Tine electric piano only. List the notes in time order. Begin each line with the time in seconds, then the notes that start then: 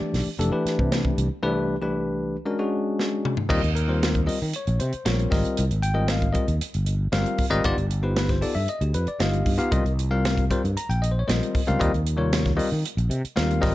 Already playing: E3 A3 D4 G4 D5
0.39 E3 A3 D4 G4 A4
0.51 E3 A3 D4 G4 B4
1.43 C2 E3 A3 D4 G4 B4
1.82 C2 E3 A3 D4 G4 B4
2.46 G#3 C#4 D4 F#4 A#4
2.59 G#3 C#4 D4 F#4 G#4
3.49 G3 C4 F4 A#4 D#5
3.62 A#4
3.75 A#4
3.88 G3 C4 F4 A#4 C5
4.26 G3 C4 F4 A#4 D#5
4.56 C#5
4.79 A#4 C5 D#5
5.05 G3 C4 F4 A#4 C#5
5.30 G3 C4 F4 A#4 D#5
5.69 A#4 C5
5.83 G5
5.94 G3 C4 F4 A#4 D#5
6.11 F5
6.33 G3 C4 F4 A#4 D#5
6.47 A#4 D#5
6.86 A#4 D#5
7.12 G3 C4 F4 A#4 F5
7.50 G3 C4 F4 A#4 D#5
7.64 B3 D#4 F4 G4 D5
7.77 G4
8.03 B3 D#4 F4 G4 B4 C5
8.17 B4
8.30 C5
8.41 B3 D#4 F4 G4 A4 D5
8.55 G4 A4 E5
8.69 D#5
8.82 G4
8.94 G4 B4 D5
9.08 D5
9.19 B3 D#4 F4 G4 D#5 F5
9.58 B3 D#4 F4 G4 F5
9.71 G3 C4 F4 A#4 D#5
9.84 A#4 D#5
10.11 G3 C4 F4 A#4 F5
10.50 G3 C4 F4 A#4 C5
10.64 A#4
10.77 A#5
10.90 G5
11.02 A#4 D#5
11.11 C5
11.19 C#5
11.27 G3 C4 F4 A#4 C5 D#5
11.67 G3 C4 F4 A#4 F5
11.79 G3 C4 F4 A#4 D#5
11.93 A#4 F5
12.16 C3 G3 F4 A#4 C#5
12.56 G3 C4 F4 A#4 D#5
12.70 A#4 F5
13.09 A#4 D#5
13.36 G3 C4 F4 A#4 F5
13.61 G3 C4 F4 A#4 D#5